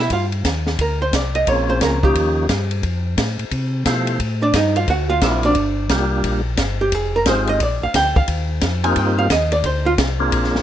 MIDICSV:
0, 0, Header, 1, 5, 480
1, 0, Start_track
1, 0, Key_signature, -3, "minor"
1, 0, Tempo, 340522
1, 144, Time_signature, 4, 2, 24, 8
1, 14974, End_track
2, 0, Start_track
2, 0, Title_t, "Hollow-body jazz guitar"
2, 0, Program_c, 0, 26
2, 0, Note_on_c, 0, 64, 75
2, 0, Note_on_c, 0, 76, 96
2, 142, Note_off_c, 0, 76, 0
2, 146, Note_off_c, 0, 64, 0
2, 178, Note_on_c, 0, 77, 85
2, 185, Note_on_c, 0, 65, 69
2, 354, Note_off_c, 0, 77, 0
2, 359, Note_off_c, 0, 65, 0
2, 1145, Note_on_c, 0, 70, 75
2, 1427, Note_off_c, 0, 70, 0
2, 1435, Note_on_c, 0, 72, 93
2, 1591, Note_off_c, 0, 72, 0
2, 1619, Note_on_c, 0, 74, 83
2, 1902, Note_off_c, 0, 74, 0
2, 1908, Note_on_c, 0, 75, 101
2, 2068, Note_off_c, 0, 75, 0
2, 2091, Note_on_c, 0, 73, 84
2, 2381, Note_off_c, 0, 73, 0
2, 2389, Note_on_c, 0, 72, 93
2, 2549, Note_off_c, 0, 72, 0
2, 2578, Note_on_c, 0, 70, 79
2, 2865, Note_off_c, 0, 70, 0
2, 2881, Note_on_c, 0, 67, 90
2, 3945, Note_off_c, 0, 67, 0
2, 6235, Note_on_c, 0, 62, 78
2, 6240, Note_on_c, 0, 74, 89
2, 6394, Note_off_c, 0, 74, 0
2, 6396, Note_off_c, 0, 62, 0
2, 6427, Note_on_c, 0, 63, 57
2, 6428, Note_on_c, 0, 75, 78
2, 6710, Note_off_c, 0, 75, 0
2, 6712, Note_off_c, 0, 63, 0
2, 6717, Note_on_c, 0, 65, 80
2, 6719, Note_on_c, 0, 77, 80
2, 6874, Note_off_c, 0, 77, 0
2, 6876, Note_off_c, 0, 65, 0
2, 6905, Note_on_c, 0, 66, 78
2, 6911, Note_on_c, 0, 78, 90
2, 7177, Note_off_c, 0, 78, 0
2, 7182, Note_on_c, 0, 77, 102
2, 7183, Note_off_c, 0, 66, 0
2, 7189, Note_on_c, 0, 65, 80
2, 7348, Note_off_c, 0, 77, 0
2, 7351, Note_off_c, 0, 65, 0
2, 7381, Note_on_c, 0, 76, 83
2, 7391, Note_on_c, 0, 64, 56
2, 7669, Note_off_c, 0, 76, 0
2, 7672, Note_off_c, 0, 64, 0
2, 7680, Note_on_c, 0, 74, 93
2, 7691, Note_on_c, 0, 62, 76
2, 8745, Note_off_c, 0, 74, 0
2, 8751, Note_off_c, 0, 62, 0
2, 9601, Note_on_c, 0, 67, 90
2, 9791, Note_off_c, 0, 67, 0
2, 9791, Note_on_c, 0, 68, 78
2, 10073, Note_off_c, 0, 68, 0
2, 10091, Note_on_c, 0, 70, 92
2, 10242, Note_off_c, 0, 70, 0
2, 10277, Note_on_c, 0, 72, 82
2, 10556, Note_off_c, 0, 72, 0
2, 10562, Note_on_c, 0, 75, 106
2, 10717, Note_off_c, 0, 75, 0
2, 10750, Note_on_c, 0, 74, 89
2, 11032, Note_off_c, 0, 74, 0
2, 11042, Note_on_c, 0, 77, 99
2, 11197, Note_off_c, 0, 77, 0
2, 11215, Note_on_c, 0, 79, 107
2, 11504, Note_off_c, 0, 79, 0
2, 11507, Note_on_c, 0, 77, 91
2, 11951, Note_off_c, 0, 77, 0
2, 12461, Note_on_c, 0, 80, 104
2, 12659, Note_off_c, 0, 80, 0
2, 12659, Note_on_c, 0, 79, 104
2, 12946, Note_off_c, 0, 79, 0
2, 12947, Note_on_c, 0, 77, 102
2, 13109, Note_off_c, 0, 77, 0
2, 13136, Note_on_c, 0, 75, 86
2, 13421, Note_off_c, 0, 75, 0
2, 13426, Note_on_c, 0, 74, 91
2, 13588, Note_off_c, 0, 74, 0
2, 13613, Note_on_c, 0, 72, 85
2, 13902, Note_off_c, 0, 72, 0
2, 13903, Note_on_c, 0, 65, 96
2, 14004, Note_off_c, 0, 65, 0
2, 14974, End_track
3, 0, Start_track
3, 0, Title_t, "Tonewheel organ"
3, 0, Program_c, 1, 16
3, 2077, Note_on_c, 1, 53, 63
3, 2082, Note_on_c, 1, 58, 59
3, 2084, Note_on_c, 1, 60, 54
3, 2089, Note_on_c, 1, 68, 69
3, 2091, Note_on_c, 1, 61, 59
3, 2802, Note_off_c, 1, 53, 0
3, 2804, Note_off_c, 1, 58, 0
3, 2805, Note_off_c, 1, 60, 0
3, 2808, Note_off_c, 1, 68, 0
3, 2809, Note_off_c, 1, 61, 0
3, 2862, Note_on_c, 1, 53, 64
3, 2862, Note_on_c, 1, 58, 64
3, 2867, Note_on_c, 1, 61, 66
3, 2870, Note_on_c, 1, 63, 66
3, 2874, Note_on_c, 1, 67, 81
3, 3477, Note_off_c, 1, 58, 0
3, 3478, Note_off_c, 1, 53, 0
3, 3480, Note_off_c, 1, 61, 0
3, 3482, Note_off_c, 1, 63, 0
3, 3484, Note_off_c, 1, 67, 0
3, 5442, Note_on_c, 1, 53, 64
3, 5446, Note_on_c, 1, 57, 55
3, 5446, Note_on_c, 1, 72, 59
3, 5454, Note_on_c, 1, 64, 59
3, 5460, Note_on_c, 1, 67, 67
3, 5918, Note_off_c, 1, 53, 0
3, 5919, Note_off_c, 1, 57, 0
3, 5919, Note_off_c, 1, 72, 0
3, 5924, Note_off_c, 1, 64, 0
3, 5927, Note_off_c, 1, 67, 0
3, 7353, Note_on_c, 1, 54, 49
3, 7358, Note_on_c, 1, 60, 51
3, 7359, Note_on_c, 1, 58, 51
3, 7360, Note_on_c, 1, 62, 48
3, 7363, Note_on_c, 1, 65, 59
3, 7833, Note_off_c, 1, 54, 0
3, 7836, Note_off_c, 1, 58, 0
3, 7836, Note_off_c, 1, 60, 0
3, 7837, Note_off_c, 1, 62, 0
3, 7838, Note_off_c, 1, 65, 0
3, 8314, Note_on_c, 1, 58, 61
3, 8318, Note_on_c, 1, 55, 70
3, 8319, Note_on_c, 1, 62, 60
3, 8326, Note_on_c, 1, 65, 65
3, 8329, Note_on_c, 1, 67, 75
3, 9041, Note_off_c, 1, 58, 0
3, 9044, Note_off_c, 1, 55, 0
3, 9044, Note_off_c, 1, 62, 0
3, 9047, Note_off_c, 1, 65, 0
3, 9049, Note_off_c, 1, 67, 0
3, 10236, Note_on_c, 1, 56, 73
3, 10243, Note_on_c, 1, 60, 61
3, 10245, Note_on_c, 1, 63, 61
3, 10247, Note_on_c, 1, 65, 61
3, 10250, Note_on_c, 1, 67, 74
3, 10714, Note_off_c, 1, 56, 0
3, 10717, Note_off_c, 1, 60, 0
3, 10718, Note_off_c, 1, 63, 0
3, 10719, Note_off_c, 1, 65, 0
3, 10721, Note_off_c, 1, 67, 0
3, 12455, Note_on_c, 1, 58, 78
3, 12459, Note_on_c, 1, 60, 70
3, 12467, Note_on_c, 1, 63, 70
3, 12467, Note_on_c, 1, 67, 91
3, 12469, Note_on_c, 1, 65, 74
3, 13073, Note_off_c, 1, 58, 0
3, 13075, Note_off_c, 1, 60, 0
3, 13079, Note_off_c, 1, 63, 0
3, 13079, Note_off_c, 1, 67, 0
3, 13080, Note_off_c, 1, 65, 0
3, 14371, Note_on_c, 1, 58, 72
3, 14375, Note_on_c, 1, 62, 63
3, 14376, Note_on_c, 1, 60, 64
3, 14379, Note_on_c, 1, 65, 68
3, 14385, Note_on_c, 1, 68, 81
3, 14974, Note_off_c, 1, 58, 0
3, 14974, Note_off_c, 1, 60, 0
3, 14974, Note_off_c, 1, 62, 0
3, 14974, Note_off_c, 1, 65, 0
3, 14974, Note_off_c, 1, 68, 0
3, 14974, End_track
4, 0, Start_track
4, 0, Title_t, "Tonewheel organ"
4, 0, Program_c, 2, 16
4, 144, Note_on_c, 2, 43, 78
4, 610, Note_off_c, 2, 43, 0
4, 627, Note_on_c, 2, 39, 79
4, 1092, Note_off_c, 2, 39, 0
4, 1108, Note_on_c, 2, 38, 79
4, 1574, Note_off_c, 2, 38, 0
4, 1587, Note_on_c, 2, 36, 77
4, 2054, Note_off_c, 2, 36, 0
4, 2077, Note_on_c, 2, 34, 78
4, 2539, Note_off_c, 2, 34, 0
4, 2554, Note_on_c, 2, 37, 90
4, 3018, Note_off_c, 2, 37, 0
4, 3031, Note_on_c, 2, 39, 82
4, 3497, Note_off_c, 2, 39, 0
4, 3514, Note_on_c, 2, 43, 83
4, 3978, Note_off_c, 2, 43, 0
4, 3993, Note_on_c, 2, 41, 86
4, 4458, Note_off_c, 2, 41, 0
4, 4475, Note_on_c, 2, 45, 89
4, 4761, Note_off_c, 2, 45, 0
4, 4778, Note_on_c, 2, 45, 38
4, 4864, Note_off_c, 2, 45, 0
4, 4952, Note_on_c, 2, 48, 84
4, 5418, Note_off_c, 2, 48, 0
4, 5430, Note_on_c, 2, 47, 86
4, 5897, Note_off_c, 2, 47, 0
4, 5915, Note_on_c, 2, 45, 88
4, 6380, Note_off_c, 2, 45, 0
4, 6392, Note_on_c, 2, 43, 90
4, 6858, Note_off_c, 2, 43, 0
4, 6875, Note_on_c, 2, 38, 80
4, 7340, Note_off_c, 2, 38, 0
4, 7351, Note_on_c, 2, 34, 85
4, 7818, Note_off_c, 2, 34, 0
4, 7828, Note_on_c, 2, 31, 81
4, 8296, Note_off_c, 2, 31, 0
4, 8314, Note_on_c, 2, 36, 88
4, 8779, Note_off_c, 2, 36, 0
4, 8794, Note_on_c, 2, 34, 83
4, 9259, Note_off_c, 2, 34, 0
4, 9272, Note_on_c, 2, 31, 87
4, 9738, Note_off_c, 2, 31, 0
4, 9756, Note_on_c, 2, 29, 83
4, 10220, Note_off_c, 2, 29, 0
4, 10231, Note_on_c, 2, 32, 86
4, 10697, Note_off_c, 2, 32, 0
4, 10716, Note_on_c, 2, 34, 88
4, 11002, Note_off_c, 2, 34, 0
4, 11023, Note_on_c, 2, 34, 39
4, 11108, Note_off_c, 2, 34, 0
4, 11195, Note_on_c, 2, 38, 86
4, 11481, Note_off_c, 2, 38, 0
4, 11508, Note_on_c, 2, 38, 45
4, 11591, Note_off_c, 2, 38, 0
4, 11671, Note_on_c, 2, 39, 85
4, 12136, Note_off_c, 2, 39, 0
4, 12149, Note_on_c, 2, 41, 89
4, 12615, Note_off_c, 2, 41, 0
4, 12627, Note_on_c, 2, 43, 85
4, 13094, Note_off_c, 2, 43, 0
4, 13109, Note_on_c, 2, 39, 89
4, 13574, Note_off_c, 2, 39, 0
4, 13586, Note_on_c, 2, 38, 89
4, 14052, Note_off_c, 2, 38, 0
4, 14066, Note_on_c, 2, 36, 93
4, 14532, Note_off_c, 2, 36, 0
4, 14550, Note_on_c, 2, 34, 88
4, 14837, Note_off_c, 2, 34, 0
4, 14854, Note_on_c, 2, 34, 44
4, 14940, Note_off_c, 2, 34, 0
4, 14974, End_track
5, 0, Start_track
5, 0, Title_t, "Drums"
5, 139, Note_on_c, 9, 51, 63
5, 145, Note_on_c, 9, 36, 24
5, 280, Note_off_c, 9, 51, 0
5, 286, Note_off_c, 9, 36, 0
5, 452, Note_on_c, 9, 51, 44
5, 593, Note_off_c, 9, 51, 0
5, 628, Note_on_c, 9, 44, 59
5, 628, Note_on_c, 9, 51, 65
5, 629, Note_on_c, 9, 36, 21
5, 634, Note_on_c, 9, 38, 65
5, 769, Note_off_c, 9, 44, 0
5, 769, Note_off_c, 9, 51, 0
5, 770, Note_off_c, 9, 36, 0
5, 775, Note_off_c, 9, 38, 0
5, 939, Note_on_c, 9, 38, 54
5, 1080, Note_off_c, 9, 38, 0
5, 1109, Note_on_c, 9, 51, 60
5, 1112, Note_on_c, 9, 36, 19
5, 1250, Note_off_c, 9, 51, 0
5, 1253, Note_off_c, 9, 36, 0
5, 1591, Note_on_c, 9, 44, 57
5, 1591, Note_on_c, 9, 51, 64
5, 1593, Note_on_c, 9, 36, 22
5, 1597, Note_on_c, 9, 38, 67
5, 1732, Note_off_c, 9, 44, 0
5, 1732, Note_off_c, 9, 51, 0
5, 1734, Note_off_c, 9, 36, 0
5, 1738, Note_off_c, 9, 38, 0
5, 1900, Note_on_c, 9, 51, 44
5, 2041, Note_off_c, 9, 51, 0
5, 2070, Note_on_c, 9, 51, 62
5, 2076, Note_on_c, 9, 36, 23
5, 2211, Note_off_c, 9, 51, 0
5, 2217, Note_off_c, 9, 36, 0
5, 2549, Note_on_c, 9, 44, 57
5, 2549, Note_on_c, 9, 51, 66
5, 2555, Note_on_c, 9, 38, 66
5, 2556, Note_on_c, 9, 36, 23
5, 2690, Note_off_c, 9, 44, 0
5, 2690, Note_off_c, 9, 51, 0
5, 2696, Note_off_c, 9, 38, 0
5, 2697, Note_off_c, 9, 36, 0
5, 2867, Note_on_c, 9, 36, 51
5, 3008, Note_off_c, 9, 36, 0
5, 3035, Note_on_c, 9, 51, 59
5, 3037, Note_on_c, 9, 36, 18
5, 3176, Note_off_c, 9, 51, 0
5, 3178, Note_off_c, 9, 36, 0
5, 3509, Note_on_c, 9, 44, 51
5, 3509, Note_on_c, 9, 51, 62
5, 3513, Note_on_c, 9, 36, 20
5, 3515, Note_on_c, 9, 38, 68
5, 3650, Note_off_c, 9, 44, 0
5, 3650, Note_off_c, 9, 51, 0
5, 3654, Note_off_c, 9, 36, 0
5, 3656, Note_off_c, 9, 38, 0
5, 3817, Note_on_c, 9, 51, 44
5, 3958, Note_off_c, 9, 51, 0
5, 3990, Note_on_c, 9, 51, 54
5, 3994, Note_on_c, 9, 36, 23
5, 4131, Note_off_c, 9, 51, 0
5, 4135, Note_off_c, 9, 36, 0
5, 4475, Note_on_c, 9, 36, 22
5, 4476, Note_on_c, 9, 44, 48
5, 4476, Note_on_c, 9, 51, 68
5, 4482, Note_on_c, 9, 38, 69
5, 4616, Note_off_c, 9, 36, 0
5, 4617, Note_off_c, 9, 44, 0
5, 4617, Note_off_c, 9, 51, 0
5, 4623, Note_off_c, 9, 38, 0
5, 4781, Note_on_c, 9, 51, 42
5, 4921, Note_off_c, 9, 51, 0
5, 4951, Note_on_c, 9, 51, 61
5, 4954, Note_on_c, 9, 36, 18
5, 5092, Note_off_c, 9, 51, 0
5, 5095, Note_off_c, 9, 36, 0
5, 5433, Note_on_c, 9, 44, 60
5, 5433, Note_on_c, 9, 51, 70
5, 5434, Note_on_c, 9, 36, 20
5, 5439, Note_on_c, 9, 38, 64
5, 5574, Note_off_c, 9, 44, 0
5, 5574, Note_off_c, 9, 51, 0
5, 5575, Note_off_c, 9, 36, 0
5, 5580, Note_off_c, 9, 38, 0
5, 5737, Note_on_c, 9, 51, 48
5, 5878, Note_off_c, 9, 51, 0
5, 5915, Note_on_c, 9, 51, 62
5, 5916, Note_on_c, 9, 36, 24
5, 6056, Note_off_c, 9, 36, 0
5, 6056, Note_off_c, 9, 51, 0
5, 6392, Note_on_c, 9, 44, 58
5, 6392, Note_on_c, 9, 51, 77
5, 6394, Note_on_c, 9, 36, 21
5, 6398, Note_on_c, 9, 38, 66
5, 6533, Note_off_c, 9, 44, 0
5, 6533, Note_off_c, 9, 51, 0
5, 6535, Note_off_c, 9, 36, 0
5, 6539, Note_off_c, 9, 38, 0
5, 6706, Note_on_c, 9, 51, 44
5, 6847, Note_off_c, 9, 51, 0
5, 6873, Note_on_c, 9, 51, 61
5, 6877, Note_on_c, 9, 36, 24
5, 7014, Note_off_c, 9, 51, 0
5, 7018, Note_off_c, 9, 36, 0
5, 7349, Note_on_c, 9, 44, 52
5, 7349, Note_on_c, 9, 51, 68
5, 7354, Note_on_c, 9, 36, 25
5, 7354, Note_on_c, 9, 38, 70
5, 7490, Note_off_c, 9, 44, 0
5, 7490, Note_off_c, 9, 51, 0
5, 7495, Note_off_c, 9, 36, 0
5, 7495, Note_off_c, 9, 38, 0
5, 7654, Note_on_c, 9, 51, 46
5, 7795, Note_off_c, 9, 51, 0
5, 7818, Note_on_c, 9, 51, 62
5, 7831, Note_on_c, 9, 36, 19
5, 7959, Note_off_c, 9, 51, 0
5, 7972, Note_off_c, 9, 36, 0
5, 8306, Note_on_c, 9, 44, 52
5, 8306, Note_on_c, 9, 51, 63
5, 8312, Note_on_c, 9, 38, 73
5, 8313, Note_on_c, 9, 36, 20
5, 8447, Note_off_c, 9, 44, 0
5, 8447, Note_off_c, 9, 51, 0
5, 8453, Note_off_c, 9, 38, 0
5, 8454, Note_off_c, 9, 36, 0
5, 8791, Note_on_c, 9, 51, 66
5, 8795, Note_on_c, 9, 36, 24
5, 8932, Note_off_c, 9, 51, 0
5, 8936, Note_off_c, 9, 36, 0
5, 9264, Note_on_c, 9, 44, 55
5, 9264, Note_on_c, 9, 51, 74
5, 9270, Note_on_c, 9, 38, 68
5, 9273, Note_on_c, 9, 36, 24
5, 9405, Note_off_c, 9, 44, 0
5, 9405, Note_off_c, 9, 51, 0
5, 9410, Note_off_c, 9, 38, 0
5, 9414, Note_off_c, 9, 36, 0
5, 9752, Note_on_c, 9, 51, 64
5, 9756, Note_on_c, 9, 36, 23
5, 9893, Note_off_c, 9, 51, 0
5, 9897, Note_off_c, 9, 36, 0
5, 10227, Note_on_c, 9, 44, 57
5, 10227, Note_on_c, 9, 51, 68
5, 10233, Note_on_c, 9, 38, 75
5, 10235, Note_on_c, 9, 36, 22
5, 10368, Note_off_c, 9, 44, 0
5, 10368, Note_off_c, 9, 51, 0
5, 10374, Note_off_c, 9, 38, 0
5, 10376, Note_off_c, 9, 36, 0
5, 10534, Note_on_c, 9, 51, 48
5, 10675, Note_off_c, 9, 51, 0
5, 10713, Note_on_c, 9, 51, 67
5, 10716, Note_on_c, 9, 36, 21
5, 10854, Note_off_c, 9, 51, 0
5, 10857, Note_off_c, 9, 36, 0
5, 11193, Note_on_c, 9, 44, 54
5, 11193, Note_on_c, 9, 51, 75
5, 11195, Note_on_c, 9, 36, 20
5, 11198, Note_on_c, 9, 38, 69
5, 11334, Note_off_c, 9, 44, 0
5, 11334, Note_off_c, 9, 51, 0
5, 11336, Note_off_c, 9, 36, 0
5, 11339, Note_off_c, 9, 38, 0
5, 11506, Note_on_c, 9, 36, 54
5, 11647, Note_off_c, 9, 36, 0
5, 11665, Note_on_c, 9, 51, 62
5, 11673, Note_on_c, 9, 36, 19
5, 11806, Note_off_c, 9, 51, 0
5, 11814, Note_off_c, 9, 36, 0
5, 12140, Note_on_c, 9, 44, 54
5, 12140, Note_on_c, 9, 51, 69
5, 12146, Note_on_c, 9, 38, 70
5, 12150, Note_on_c, 9, 36, 20
5, 12281, Note_off_c, 9, 44, 0
5, 12281, Note_off_c, 9, 51, 0
5, 12287, Note_off_c, 9, 38, 0
5, 12291, Note_off_c, 9, 36, 0
5, 12459, Note_on_c, 9, 51, 50
5, 12600, Note_off_c, 9, 51, 0
5, 12625, Note_on_c, 9, 51, 64
5, 12631, Note_on_c, 9, 36, 20
5, 12766, Note_off_c, 9, 51, 0
5, 12772, Note_off_c, 9, 36, 0
5, 13107, Note_on_c, 9, 44, 60
5, 13107, Note_on_c, 9, 51, 71
5, 13111, Note_on_c, 9, 36, 21
5, 13113, Note_on_c, 9, 38, 77
5, 13248, Note_off_c, 9, 44, 0
5, 13248, Note_off_c, 9, 51, 0
5, 13252, Note_off_c, 9, 36, 0
5, 13254, Note_off_c, 9, 38, 0
5, 13414, Note_on_c, 9, 51, 50
5, 13555, Note_off_c, 9, 51, 0
5, 13583, Note_on_c, 9, 51, 65
5, 13588, Note_on_c, 9, 36, 23
5, 13724, Note_off_c, 9, 51, 0
5, 13729, Note_off_c, 9, 36, 0
5, 14068, Note_on_c, 9, 44, 56
5, 14068, Note_on_c, 9, 51, 77
5, 14069, Note_on_c, 9, 36, 27
5, 14074, Note_on_c, 9, 38, 78
5, 14209, Note_off_c, 9, 44, 0
5, 14209, Note_off_c, 9, 51, 0
5, 14210, Note_off_c, 9, 36, 0
5, 14215, Note_off_c, 9, 38, 0
5, 14548, Note_on_c, 9, 51, 69
5, 14551, Note_on_c, 9, 36, 21
5, 14689, Note_off_c, 9, 51, 0
5, 14692, Note_off_c, 9, 36, 0
5, 14717, Note_on_c, 9, 38, 30
5, 14858, Note_off_c, 9, 38, 0
5, 14877, Note_on_c, 9, 38, 50
5, 14974, Note_off_c, 9, 38, 0
5, 14974, End_track
0, 0, End_of_file